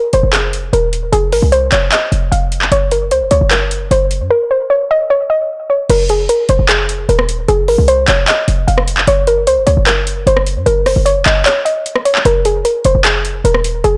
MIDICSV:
0, 0, Header, 1, 4, 480
1, 0, Start_track
1, 0, Tempo, 397351
1, 1361, Time_signature, 4, 2, 24, 8
1, 16879, End_track
2, 0, Start_track
2, 0, Title_t, "Synth pluck"
2, 0, Program_c, 0, 84
2, 164, Note_on_c, 0, 72, 80
2, 347, Note_off_c, 0, 72, 0
2, 397, Note_on_c, 0, 68, 81
2, 850, Note_off_c, 0, 68, 0
2, 883, Note_on_c, 0, 70, 87
2, 1066, Note_off_c, 0, 70, 0
2, 1359, Note_on_c, 0, 68, 113
2, 1543, Note_off_c, 0, 68, 0
2, 1601, Note_on_c, 0, 70, 90
2, 1785, Note_off_c, 0, 70, 0
2, 1838, Note_on_c, 0, 72, 101
2, 2023, Note_off_c, 0, 72, 0
2, 2085, Note_on_c, 0, 73, 85
2, 2267, Note_off_c, 0, 73, 0
2, 2325, Note_on_c, 0, 75, 99
2, 2775, Note_off_c, 0, 75, 0
2, 2797, Note_on_c, 0, 77, 80
2, 2982, Note_off_c, 0, 77, 0
2, 3285, Note_on_c, 0, 73, 98
2, 3467, Note_off_c, 0, 73, 0
2, 3523, Note_on_c, 0, 70, 78
2, 3706, Note_off_c, 0, 70, 0
2, 3763, Note_on_c, 0, 72, 73
2, 3946, Note_off_c, 0, 72, 0
2, 3997, Note_on_c, 0, 73, 80
2, 4182, Note_off_c, 0, 73, 0
2, 4239, Note_on_c, 0, 70, 78
2, 4691, Note_off_c, 0, 70, 0
2, 4727, Note_on_c, 0, 72, 88
2, 4908, Note_off_c, 0, 72, 0
2, 5200, Note_on_c, 0, 70, 107
2, 5384, Note_off_c, 0, 70, 0
2, 5444, Note_on_c, 0, 72, 74
2, 5627, Note_off_c, 0, 72, 0
2, 5677, Note_on_c, 0, 73, 82
2, 5862, Note_off_c, 0, 73, 0
2, 5928, Note_on_c, 0, 75, 94
2, 6109, Note_off_c, 0, 75, 0
2, 6163, Note_on_c, 0, 73, 96
2, 6346, Note_off_c, 0, 73, 0
2, 6400, Note_on_c, 0, 75, 87
2, 6852, Note_off_c, 0, 75, 0
2, 6882, Note_on_c, 0, 73, 74
2, 7065, Note_off_c, 0, 73, 0
2, 7127, Note_on_c, 0, 70, 100
2, 7308, Note_off_c, 0, 70, 0
2, 7365, Note_on_c, 0, 68, 86
2, 7547, Note_off_c, 0, 68, 0
2, 7600, Note_on_c, 0, 70, 85
2, 7784, Note_off_c, 0, 70, 0
2, 7845, Note_on_c, 0, 72, 83
2, 8027, Note_off_c, 0, 72, 0
2, 8080, Note_on_c, 0, 68, 80
2, 8532, Note_off_c, 0, 68, 0
2, 8565, Note_on_c, 0, 70, 90
2, 8747, Note_off_c, 0, 70, 0
2, 9041, Note_on_c, 0, 68, 115
2, 9225, Note_off_c, 0, 68, 0
2, 9282, Note_on_c, 0, 70, 86
2, 9465, Note_off_c, 0, 70, 0
2, 9519, Note_on_c, 0, 72, 104
2, 9704, Note_off_c, 0, 72, 0
2, 9766, Note_on_c, 0, 73, 89
2, 9948, Note_off_c, 0, 73, 0
2, 10006, Note_on_c, 0, 75, 98
2, 10455, Note_off_c, 0, 75, 0
2, 10479, Note_on_c, 0, 77, 80
2, 10663, Note_off_c, 0, 77, 0
2, 10965, Note_on_c, 0, 73, 100
2, 11147, Note_off_c, 0, 73, 0
2, 11203, Note_on_c, 0, 70, 85
2, 11386, Note_off_c, 0, 70, 0
2, 11442, Note_on_c, 0, 72, 76
2, 11625, Note_off_c, 0, 72, 0
2, 11676, Note_on_c, 0, 73, 84
2, 11862, Note_off_c, 0, 73, 0
2, 11918, Note_on_c, 0, 70, 80
2, 12371, Note_off_c, 0, 70, 0
2, 12406, Note_on_c, 0, 72, 90
2, 12588, Note_off_c, 0, 72, 0
2, 12878, Note_on_c, 0, 70, 111
2, 13063, Note_off_c, 0, 70, 0
2, 13123, Note_on_c, 0, 72, 73
2, 13306, Note_off_c, 0, 72, 0
2, 13354, Note_on_c, 0, 73, 84
2, 13541, Note_off_c, 0, 73, 0
2, 13605, Note_on_c, 0, 75, 93
2, 13787, Note_off_c, 0, 75, 0
2, 13841, Note_on_c, 0, 73, 95
2, 14025, Note_off_c, 0, 73, 0
2, 14077, Note_on_c, 0, 75, 85
2, 14530, Note_off_c, 0, 75, 0
2, 14560, Note_on_c, 0, 73, 77
2, 14744, Note_off_c, 0, 73, 0
2, 14805, Note_on_c, 0, 70, 100
2, 14987, Note_off_c, 0, 70, 0
2, 15045, Note_on_c, 0, 68, 88
2, 15227, Note_off_c, 0, 68, 0
2, 15279, Note_on_c, 0, 70, 83
2, 15463, Note_off_c, 0, 70, 0
2, 15526, Note_on_c, 0, 72, 81
2, 15708, Note_off_c, 0, 72, 0
2, 15760, Note_on_c, 0, 68, 82
2, 16212, Note_off_c, 0, 68, 0
2, 16244, Note_on_c, 0, 70, 88
2, 16427, Note_off_c, 0, 70, 0
2, 16720, Note_on_c, 0, 68, 114
2, 16879, Note_off_c, 0, 68, 0
2, 16879, End_track
3, 0, Start_track
3, 0, Title_t, "808-style bass"
3, 0, Program_c, 1, 38
3, 161, Note_on_c, 1, 29, 102
3, 273, Note_off_c, 1, 29, 0
3, 281, Note_on_c, 1, 29, 101
3, 857, Note_off_c, 1, 29, 0
3, 881, Note_on_c, 1, 27, 104
3, 1342, Note_off_c, 1, 27, 0
3, 1360, Note_on_c, 1, 29, 103
3, 1601, Note_on_c, 1, 32, 103
3, 1619, Note_off_c, 1, 29, 0
3, 1715, Note_off_c, 1, 32, 0
3, 1720, Note_on_c, 1, 36, 100
3, 2066, Note_off_c, 1, 36, 0
3, 2081, Note_on_c, 1, 29, 108
3, 2311, Note_off_c, 1, 29, 0
3, 2560, Note_on_c, 1, 29, 101
3, 2791, Note_off_c, 1, 29, 0
3, 2801, Note_on_c, 1, 29, 103
3, 3262, Note_off_c, 1, 29, 0
3, 3281, Note_on_c, 1, 30, 103
3, 3761, Note_on_c, 1, 37, 97
3, 3780, Note_off_c, 1, 30, 0
3, 3881, Note_on_c, 1, 30, 101
3, 3900, Note_off_c, 1, 37, 0
3, 3995, Note_off_c, 1, 30, 0
3, 4001, Note_on_c, 1, 37, 101
3, 4116, Note_off_c, 1, 37, 0
3, 4122, Note_on_c, 1, 30, 102
3, 4698, Note_off_c, 1, 30, 0
3, 4722, Note_on_c, 1, 30, 104
3, 5081, Note_on_c, 1, 42, 100
3, 5099, Note_off_c, 1, 30, 0
3, 5195, Note_off_c, 1, 42, 0
3, 7122, Note_on_c, 1, 29, 114
3, 7582, Note_off_c, 1, 29, 0
3, 7841, Note_on_c, 1, 29, 106
3, 7954, Note_off_c, 1, 29, 0
3, 7961, Note_on_c, 1, 29, 99
3, 8537, Note_off_c, 1, 29, 0
3, 8562, Note_on_c, 1, 27, 101
3, 9022, Note_off_c, 1, 27, 0
3, 9041, Note_on_c, 1, 29, 104
3, 9282, Note_on_c, 1, 32, 99
3, 9300, Note_off_c, 1, 29, 0
3, 9396, Note_off_c, 1, 32, 0
3, 9402, Note_on_c, 1, 36, 102
3, 9747, Note_off_c, 1, 36, 0
3, 9762, Note_on_c, 1, 29, 109
3, 9992, Note_off_c, 1, 29, 0
3, 10242, Note_on_c, 1, 29, 101
3, 10472, Note_off_c, 1, 29, 0
3, 10482, Note_on_c, 1, 29, 103
3, 10943, Note_off_c, 1, 29, 0
3, 10962, Note_on_c, 1, 30, 107
3, 11442, Note_on_c, 1, 37, 100
3, 11460, Note_off_c, 1, 30, 0
3, 11562, Note_on_c, 1, 30, 101
3, 11580, Note_off_c, 1, 37, 0
3, 11676, Note_off_c, 1, 30, 0
3, 11682, Note_on_c, 1, 37, 103
3, 11797, Note_off_c, 1, 37, 0
3, 11802, Note_on_c, 1, 30, 102
3, 12378, Note_off_c, 1, 30, 0
3, 12402, Note_on_c, 1, 30, 105
3, 12762, Note_on_c, 1, 42, 101
3, 12780, Note_off_c, 1, 30, 0
3, 12876, Note_off_c, 1, 42, 0
3, 12881, Note_on_c, 1, 30, 109
3, 13227, Note_off_c, 1, 30, 0
3, 13241, Note_on_c, 1, 30, 106
3, 13481, Note_on_c, 1, 29, 98
3, 13499, Note_off_c, 1, 30, 0
3, 13595, Note_off_c, 1, 29, 0
3, 13601, Note_on_c, 1, 30, 109
3, 13832, Note_off_c, 1, 30, 0
3, 14802, Note_on_c, 1, 29, 113
3, 15262, Note_off_c, 1, 29, 0
3, 15522, Note_on_c, 1, 29, 106
3, 15637, Note_off_c, 1, 29, 0
3, 15642, Note_on_c, 1, 29, 100
3, 16218, Note_off_c, 1, 29, 0
3, 16241, Note_on_c, 1, 27, 108
3, 16702, Note_off_c, 1, 27, 0
3, 16722, Note_on_c, 1, 29, 110
3, 16879, Note_off_c, 1, 29, 0
3, 16879, End_track
4, 0, Start_track
4, 0, Title_t, "Drums"
4, 156, Note_on_c, 9, 42, 84
4, 277, Note_off_c, 9, 42, 0
4, 401, Note_on_c, 9, 39, 125
4, 404, Note_on_c, 9, 42, 89
4, 521, Note_off_c, 9, 39, 0
4, 525, Note_off_c, 9, 42, 0
4, 643, Note_on_c, 9, 42, 73
4, 764, Note_off_c, 9, 42, 0
4, 885, Note_on_c, 9, 42, 76
4, 1006, Note_off_c, 9, 42, 0
4, 1122, Note_on_c, 9, 42, 73
4, 1242, Note_off_c, 9, 42, 0
4, 1361, Note_on_c, 9, 42, 84
4, 1482, Note_off_c, 9, 42, 0
4, 1600, Note_on_c, 9, 46, 77
4, 1721, Note_off_c, 9, 46, 0
4, 1840, Note_on_c, 9, 42, 96
4, 1961, Note_off_c, 9, 42, 0
4, 2076, Note_on_c, 9, 42, 81
4, 2081, Note_on_c, 9, 39, 101
4, 2197, Note_off_c, 9, 42, 0
4, 2202, Note_off_c, 9, 39, 0
4, 2321, Note_on_c, 9, 39, 124
4, 2324, Note_on_c, 9, 42, 89
4, 2441, Note_off_c, 9, 39, 0
4, 2445, Note_off_c, 9, 42, 0
4, 2563, Note_on_c, 9, 42, 74
4, 2683, Note_off_c, 9, 42, 0
4, 2806, Note_on_c, 9, 42, 76
4, 2927, Note_off_c, 9, 42, 0
4, 3043, Note_on_c, 9, 42, 72
4, 3162, Note_on_c, 9, 39, 62
4, 3163, Note_off_c, 9, 42, 0
4, 3282, Note_on_c, 9, 42, 82
4, 3283, Note_off_c, 9, 39, 0
4, 3403, Note_off_c, 9, 42, 0
4, 3521, Note_on_c, 9, 42, 70
4, 3642, Note_off_c, 9, 42, 0
4, 3760, Note_on_c, 9, 42, 94
4, 3881, Note_off_c, 9, 42, 0
4, 3997, Note_on_c, 9, 42, 84
4, 4117, Note_off_c, 9, 42, 0
4, 4241, Note_on_c, 9, 39, 123
4, 4244, Note_on_c, 9, 42, 85
4, 4361, Note_off_c, 9, 39, 0
4, 4365, Note_off_c, 9, 42, 0
4, 4483, Note_on_c, 9, 42, 74
4, 4604, Note_off_c, 9, 42, 0
4, 4726, Note_on_c, 9, 42, 78
4, 4846, Note_off_c, 9, 42, 0
4, 4962, Note_on_c, 9, 42, 73
4, 5083, Note_off_c, 9, 42, 0
4, 7121, Note_on_c, 9, 49, 110
4, 7122, Note_on_c, 9, 42, 85
4, 7242, Note_off_c, 9, 49, 0
4, 7243, Note_off_c, 9, 42, 0
4, 7360, Note_on_c, 9, 42, 80
4, 7481, Note_off_c, 9, 42, 0
4, 7600, Note_on_c, 9, 42, 97
4, 7721, Note_off_c, 9, 42, 0
4, 7836, Note_on_c, 9, 42, 78
4, 7957, Note_off_c, 9, 42, 0
4, 8081, Note_on_c, 9, 39, 127
4, 8084, Note_on_c, 9, 42, 87
4, 8201, Note_off_c, 9, 39, 0
4, 8205, Note_off_c, 9, 42, 0
4, 8323, Note_on_c, 9, 42, 71
4, 8444, Note_off_c, 9, 42, 0
4, 8566, Note_on_c, 9, 42, 78
4, 8682, Note_on_c, 9, 37, 96
4, 8686, Note_off_c, 9, 42, 0
4, 8802, Note_on_c, 9, 42, 84
4, 8803, Note_off_c, 9, 37, 0
4, 8923, Note_off_c, 9, 42, 0
4, 9042, Note_on_c, 9, 42, 86
4, 9162, Note_off_c, 9, 42, 0
4, 9280, Note_on_c, 9, 46, 80
4, 9401, Note_off_c, 9, 46, 0
4, 9519, Note_on_c, 9, 42, 102
4, 9640, Note_off_c, 9, 42, 0
4, 9756, Note_on_c, 9, 42, 78
4, 9760, Note_on_c, 9, 39, 106
4, 9877, Note_off_c, 9, 42, 0
4, 9881, Note_off_c, 9, 39, 0
4, 10001, Note_on_c, 9, 39, 127
4, 10004, Note_on_c, 9, 42, 87
4, 10122, Note_off_c, 9, 39, 0
4, 10125, Note_off_c, 9, 42, 0
4, 10243, Note_on_c, 9, 42, 71
4, 10364, Note_off_c, 9, 42, 0
4, 10485, Note_on_c, 9, 42, 78
4, 10602, Note_on_c, 9, 37, 96
4, 10606, Note_off_c, 9, 42, 0
4, 10722, Note_on_c, 9, 42, 80
4, 10723, Note_off_c, 9, 37, 0
4, 10842, Note_on_c, 9, 39, 68
4, 10843, Note_off_c, 9, 42, 0
4, 10962, Note_on_c, 9, 42, 85
4, 10963, Note_off_c, 9, 39, 0
4, 11083, Note_off_c, 9, 42, 0
4, 11201, Note_on_c, 9, 42, 80
4, 11322, Note_off_c, 9, 42, 0
4, 11440, Note_on_c, 9, 42, 99
4, 11561, Note_off_c, 9, 42, 0
4, 11677, Note_on_c, 9, 42, 79
4, 11798, Note_off_c, 9, 42, 0
4, 11921, Note_on_c, 9, 39, 127
4, 11925, Note_on_c, 9, 42, 89
4, 12042, Note_off_c, 9, 39, 0
4, 12046, Note_off_c, 9, 42, 0
4, 12163, Note_on_c, 9, 42, 72
4, 12284, Note_off_c, 9, 42, 0
4, 12405, Note_on_c, 9, 42, 77
4, 12522, Note_on_c, 9, 37, 95
4, 12526, Note_off_c, 9, 42, 0
4, 12642, Note_on_c, 9, 42, 81
4, 12643, Note_off_c, 9, 37, 0
4, 12763, Note_off_c, 9, 42, 0
4, 12882, Note_on_c, 9, 42, 86
4, 13003, Note_off_c, 9, 42, 0
4, 13120, Note_on_c, 9, 46, 79
4, 13121, Note_on_c, 9, 37, 68
4, 13241, Note_off_c, 9, 46, 0
4, 13242, Note_off_c, 9, 37, 0
4, 13360, Note_on_c, 9, 42, 97
4, 13480, Note_off_c, 9, 42, 0
4, 13596, Note_on_c, 9, 42, 75
4, 13600, Note_on_c, 9, 39, 104
4, 13717, Note_off_c, 9, 42, 0
4, 13721, Note_off_c, 9, 39, 0
4, 13841, Note_on_c, 9, 39, 127
4, 13844, Note_on_c, 9, 42, 86
4, 13961, Note_off_c, 9, 39, 0
4, 13965, Note_off_c, 9, 42, 0
4, 14083, Note_on_c, 9, 42, 70
4, 14204, Note_off_c, 9, 42, 0
4, 14326, Note_on_c, 9, 42, 80
4, 14442, Note_on_c, 9, 37, 92
4, 14446, Note_off_c, 9, 42, 0
4, 14562, Note_on_c, 9, 42, 81
4, 14563, Note_off_c, 9, 37, 0
4, 14681, Note_on_c, 9, 39, 65
4, 14683, Note_off_c, 9, 42, 0
4, 14802, Note_off_c, 9, 39, 0
4, 14802, Note_on_c, 9, 42, 89
4, 14923, Note_off_c, 9, 42, 0
4, 15041, Note_on_c, 9, 42, 83
4, 15161, Note_off_c, 9, 42, 0
4, 15280, Note_on_c, 9, 42, 100
4, 15401, Note_off_c, 9, 42, 0
4, 15517, Note_on_c, 9, 42, 78
4, 15638, Note_off_c, 9, 42, 0
4, 15761, Note_on_c, 9, 39, 127
4, 15765, Note_on_c, 9, 42, 89
4, 15882, Note_off_c, 9, 39, 0
4, 15886, Note_off_c, 9, 42, 0
4, 16003, Note_on_c, 9, 42, 69
4, 16124, Note_off_c, 9, 42, 0
4, 16246, Note_on_c, 9, 42, 78
4, 16362, Note_on_c, 9, 37, 91
4, 16366, Note_off_c, 9, 42, 0
4, 16482, Note_on_c, 9, 42, 84
4, 16483, Note_off_c, 9, 37, 0
4, 16603, Note_off_c, 9, 42, 0
4, 16722, Note_on_c, 9, 42, 89
4, 16843, Note_off_c, 9, 42, 0
4, 16879, End_track
0, 0, End_of_file